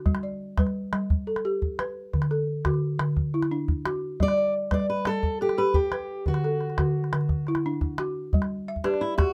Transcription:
0.06 balafon G3, calabash thump, calabash click
0.15 calabash click
0.23 balafon D5
0.58 balafon G3 B4, calabash thump, calabash click
0.67 calabash click
0.93 balafon G3, calabash click
1.10 calabash thump
1.27 balafon A4
1.36 calabash click
1.45 balafon G4
1.62 calabash thump
1.79 balafon B4, calabash click
2.13 balafon D3, calabash thump, calabash click
2.22 calabash click
2.31 balafon A4
2.65 balafon D3 F#4, calabash thump, calabash click
2.74 calabash click
2.99 balafon D3, calabash click
3.17 calabash thump
3.34 balafon E4
3.43 calabash click
3.51 balafon D4
3.68 calabash thump
3.86 balafon F#4, calabash click
4.20 balafon G3, steel-string acoustic guitar D5, calabash thump, calabash click
4.28 calabash click
4.38 balafon D5
4.71 balafon G3 B4, steel-string acoustic guitar D5, calabash thump, calabash click
4.80 calabash click
4.90 steel-string acoustic guitar B4
5.05 balafon G3, steel-string acoustic guitar A4, calabash click
5.23 calabash thump
5.41 steel-string acoustic guitar G4, balafon A4
5.49 calabash click
5.58 balafon G4, steel-string acoustic guitar B4
5.74 steel-string acoustic guitar G4, calabash thump
5.92 balafon B4, calabash click
6.26 balafon D3, steel-string acoustic guitar F#4, calabash thump
6.34 calabash click
6.44 balafon A4
6.61 calabash click
6.70 calabash click
6.78 balafon D3 F#4, calabash thump, calabash click
7.04 calabash click
7.13 balafon D3, calabash click
7.21 calabash click
7.29 calabash thump
7.47 balafon E4, calabash click
7.55 calabash click
7.66 balafon D4
7.81 calabash thump
7.98 balafon F#4, calabash click
8.33 balafon G3, calabash thump
8.42 calabash click
8.68 balafon E5
8.76 calabash thump
8.84 steel-string acoustic guitar D4, balafon G4 B4, calabash click
8.94 calabash click
9.01 steel-string acoustic guitar E4, calabash click
9.18 steel-string acoustic guitar F#4, balafon G4, calabash thump, calabash click

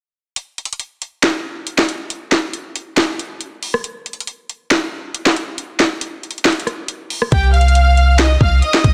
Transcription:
0.36 closed hi-hat
0.58 closed hi-hat
0.65 closed hi-hat
0.73 closed hi-hat
0.80 closed hi-hat
1.02 closed hi-hat
1.23 snare, clap, closed hi-hat
1.67 closed hi-hat
1.78 snare, clap
1.89 closed hi-hat
2.10 closed hi-hat
2.32 snare, clap
2.53 closed hi-hat
2.76 closed hi-hat
2.97 snare, clap, closed hi-hat
3.19 closed hi-hat
3.41 closed hi-hat
3.63 open hi-hat
3.74 cross-stick
3.84 closed hi-hat
4.06 closed hi-hat
4.13 closed hi-hat
4.20 closed hi-hat
4.27 closed hi-hat
4.49 closed hi-hat
4.71 snare, clap, closed hi-hat
5.14 closed hi-hat
5.26 snare, clap
5.36 closed hi-hat
5.58 closed hi-hat
5.80 snare, clap
6.01 closed hi-hat
6.23 closed hi-hat
6.31 closed hi-hat
6.38 closed hi-hat
6.45 snare, clap, closed hi-hat
6.52 closed hi-hat
6.60 closed hi-hat
6.67 cross-stick, closed hi-hat
6.88 closed hi-hat
7.10 open hi-hat
7.22 cross-stick
7.32 808-style bass C2, violin section G4 G5, kick, closed hi-hat
7.54 violin section F5 F6, closed hi-hat
7.61 closed hi-hat
7.68 closed hi-hat
7.75 closed hi-hat
7.97 closed hi-hat
8.18 violin section D#5 D#6, snare, clap, closed hi-hat
8.41 808-style bass C2, violin section F5 F6, kick
8.62 violin section D#5 D#6, closed hi-hat
8.74 snare, clap
8.84 808-style bass C2, kick, closed hi-hat

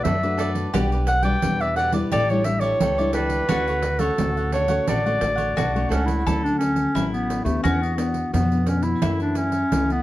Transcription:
Already playing: nylon-string guitar A3 D4 F#4, mandolin F#4
0.04 upright bass F#2, nylon-string guitar F#3, cavaquinho D4 A4 B4 D5, clarinet E5, pandeiro
0.23 nylon-string guitar A3 D4 F#4, cavaquinho A4 B4 D5, pandeiro
0.38 cavaquinho D4 A4 B4 D5, pandeiro
0.55 pandeiro
0.73 upright bass B1, nylon-string guitar B2 G3 D4, cavaquinho F#4 G4 B4 D5, mandolin G4, pandeiro
0.92 cavaquinho G4 B4 D5, pandeiro
1.07 clarinet F#5, muted cavaquinho stroke, pandeiro
1.23 nylon-string guitar G3 D4 F#4, cavaquinho G4 B4 D5, clarinet G5, pandeiro
1.42 upright bass E2, nylon-string guitar B2 G3 D4, pandeiro
1.61 cavaquinho G4 B4 D5, clarinet E5, pandeiro
1.76 cavaquinho F#4 G4 B4 D5, clarinet F#5, pandeiro
1.92 nylon-string guitar G3 D4 E4, cavaquinho G4 B4 D5, pandeiro
2.11 upright bass A1, nylon-string guitar A2, cavaquinho G4 A4 D5 E5, mandolin G4, clarinet D5, pandeiro
2.30 nylon-string guitar G3 D4 E4, cavaquinho A4 D5 E5, clarinet C#5, pandeiro
2.44 nylon-string guitar G3 D4 E4, clarinet E5, muted cavaquinho stroke, pandeiro
2.61 cavaquinho A4 D5 E5, clarinet C#5, pandeiro
2.81 upright bass C#2, nylon-string guitar E3, cavaquinho G4 A4 D5 E5, pandeiro
2.98 nylon-string guitar G3 D4 E4, cavaquinho A4 D5 E5, pandeiro
3.13 cavaquinho G4 A4 D5 E5, clarinet B4, pandeiro
3.30 pandeiro
3.49 upright bass D2, nylon-string guitar D3 A3 C#4 F#4, cavaquinho D4 A4 C#5 F#5, mandolin F#4, pandeiro
3.67 cavaquinho A4 C#5 F#5, pandeiro
3.82 muted cavaquinho stroke, pandeiro
3.99 nylon-string guitar A3 C#4 F#4, clarinet A4, cavaquinho A4 C#5 F#5, pandeiro
4.18 upright bass D2, nylon-string guitar A2 A3 C#4 F#4, pandeiro
4.37 cavaquinho A4 C#5 F#5, pandeiro
4.52 cavaquinho D4 A4 C#5 F#5, clarinet C#5, pandeiro
4.68 nylon-string guitar A3 C#4 F#4, cavaquinho A4 C#5 F#5, pandeiro
4.87 upright bass A1, nylon-string guitar D3, cavaquinho D4 A4 C#5 F#5, clarinet D5, pandeiro
5.05 nylon-string guitar A3 C#4 F#4, cavaquinho A4 C#5 F#5, pandeiro
5.21 upright bass A1, nylon-string guitar A3 F#4, muted cavaquinho stroke, pandeiro
5.36 cavaquinho A4 C#5 F#5, pandeiro
5.56 upright bass B1, nylon-string guitar A2, cavaquinho D4 A4 C#5 F#5, mandolin F#4, pandeiro
5.74 nylon-string guitar A3 C#4 F#4, cavaquinho A4 C#5 F#5, pandeiro
5.89 upright bass C#2, clarinet C#4, cavaquinho D4 A4 C#5 F#5, pandeiro
6.06 clarinet E4, pandeiro
6.26 upright bass D2, nylon-string guitar D3 F#3 A3 C#4, mandolin A4, pandeiro
6.44 clarinet D4, pandeiro
6.58 clarinet C#4, pandeiro
6.76 pandeiro
6.95 upright bass A1, nylon-string guitar A2 F#3 A3 C#4, mandolin E4, pandeiro
7.13 clarinet B3, pandeiro
7.30 pandeiro
7.44 upright bass D2, clarinet A3, nylon-string guitar B3 D4 G4, pandeiro
7.63 upright bass E2, nylon-string guitar E3, clarinet C#4, mandolin F#4, pandeiro
7.82 clarinet B3, pandeiro
7.97 nylon-string guitar B3 D4, clarinet B3, pandeiro
8.14 pandeiro
8.34 upright bass F2, nylon-string guitar B2, clarinet B3, pandeiro
8.52 nylon-string guitar B3 D4, pandeiro
8.67 clarinet C#4, pandeiro
8.83 clarinet E4, pandeiro
9.02 nylon-string guitar F#2 E3 A3 C#4, upright bass F#2, mandolin E4, pandeiro
9.20 clarinet D4, pandeiro
9.36 clarinet C#4, pandeiro
9.52 pandeiro
9.72 upright bass C#2, nylon-string guitar C#3 E3 A3 C#4, pandeiro
9.90 clarinet B3, pandeiro

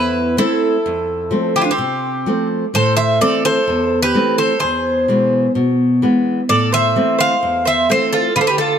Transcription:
Already playing: nylon-string guitar E2, mandolin E4, bouzouki B4
0.37 nylon-string guitar A3 C4 E4, mandolin E4, bouzouki A4
0.86 nylon-string guitar F2
1.31 nylon-string guitar F3 A3 C4
1.56 mandolin E4, bouzouki G4
1.61 mandolin D4, bouzouki F4
1.71 mandolin C4, bouzouki G4
1.78 nylon-string guitar C3
2.26 nylon-string guitar F3 A3 C4
2.74 nylon-string guitar A2, mandolin A4, bouzouki C5
2.97 mandolin C5, bouzouki E5
3.21 nylon-string guitar E3 A3 C4, mandolin A4, bouzouki D5
3.45 mandolin A4, bouzouki C5
3.68 nylon-string guitar E2
4.03 mandolin G4, bouzouki B4
4.14 nylon-string guitar E3 A3 C4
4.38 mandolin A4, bouzouki C5
4.59 nylon-string guitar E2, mandolin G#4, bouzouki C5
5.08 nylon-string guitar B2 E3 G#3
5.55 nylon-string guitar B2
6.02 nylon-string guitar E3 G#3 B3
6.49 nylon-string guitar A2, mandolin A4, bouzouki D5
6.72 mandolin C5, bouzouki E5
6.96 nylon-string guitar E3 A3 C4
7.19 mandolin C5, bouzouki F5
7.43 nylon-string guitar E2
7.65 mandolin C5, bouzouki E5
7.89 nylon-string guitar E3 A3 C4, mandolin A4, bouzouki C5
8.13 mandolin F4, bouzouki A4
8.36 nylon-string guitar D3, mandolin F4, bouzouki B4
8.41 mandolin A4, bouzouki C5
8.47 mandolin G4, bouzouki B4
8.58 mandolin F4, bouzouki A4

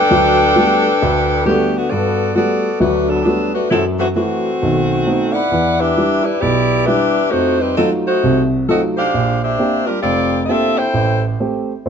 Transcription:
Already playing: saxophone section D4 A4 B4 G5
0.11 grand piano D2 F#3
0.56 grand piano G3 A3 B3 F#4
1.02 grand piano D2
1.46 saxophone section D3 A3 B3 G4, grand piano G3 A3 B3 F#4
1.76 saxophone section D3 A3 B3 F#4
1.90 grand piano G2, saxophone section B3 F#4 A4 D5
2.35 grand piano G3 A3 B3 F#4, saxophone section B3 F#4 A4 D5
2.80 grand piano D2 F#3, saxophone section A3 D4 F#4 B4
3.09 saxophone section F#3 B3 D4 A4
3.22 saxophone section F#3 B3 D4 G4 A4, grand piano G3 A3 B3 F#4
3.54 saxophone section A3 D4 F#4 B4
3.70 grand piano F#2 F#3, saxophone section F#3 C4 E4 A4
3.99 saxophone section E3 A3 C4 F#4
4.14 saxophone section E3 A3 C4 F#4, grand piano A3 E4 F#4
4.62 grand piano B1 D#3
5.07 grand piano A3 B3 C4 D#4
5.33 saxophone section E4 B4 D5 F#5
5.52 grand piano E2 E3
5.79 saxophone section D4 G4 B4 E5
5.97 grand piano G3 D4 E4
6.24 saxophone section G3 D4 E4 B4
6.41 grand piano B1 B2, saxophone section B3 E4 G4 D5
6.85 grand piano G3 D4 E4, saxophone section D4 G4 B4 E5
7.30 grand piano F2, saxophone section A3 D#4 F#4 C5
7.60 saxophone section G3 C4 D#4 B4
7.76 saxophone section F#3 C4 D#4 A4, grand piano F#3 A3 D#4 F4
8.07 saxophone section A3 D#4 F#4 C5
8.23 grand piano C2 C3
8.69 grand piano F#3 A3 D#4 F4, saxophone section C4 F#4 A4 D#5
8.97 saxophone section D4 G4 C5 F5
9.14 grand piano A#1
9.43 saxophone section D4 G4 C5 E5
9.59 grand piano A#3 C4 D4 G4
9.87 saxophone section G3 D4 F4 A#4
10.01 grand piano F1, saxophone section C4 F4 G4 D5
10.45 grand piano A#3 C4, saxophone section C4 F4 A4 D#5 E5
10.49 grand piano D4 G4
10.78 saxophone section E4 A4 C5 G5
10.94 grand piano A1
11.40 grand piano A3 C4 G4
11.86 grand piano G#2 C4

